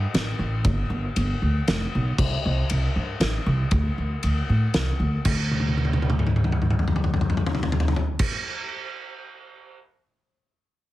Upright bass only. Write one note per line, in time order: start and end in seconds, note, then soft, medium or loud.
0.14 0.30 A1 medium
0.39 0.66 A1 medium
0.64 0.81 G1 loud
0.90 1.06 G1 loud
1.16 1.32 G1 loud
1.42 1.58 D2 medium
1.68 1.84 F1 medium
1.95 2.10 B1 medium
2.18 2.34 C2 medium
2.45 2.61 C2 medium
2.71 2.86 C2 medium
2.96 3.12 G2 medium
3.20 3.36 A1 medium
3.46 3.63 C2 loud
3.72 3.88 D2 loud
3.98 4.14 D2 medium
4.24 4.40 D2 medium
4.49 4.65 A2 medium
4.74 4.90 C2 medium
5.00 5.16 D2 medium
5.26 8.26 D2 medium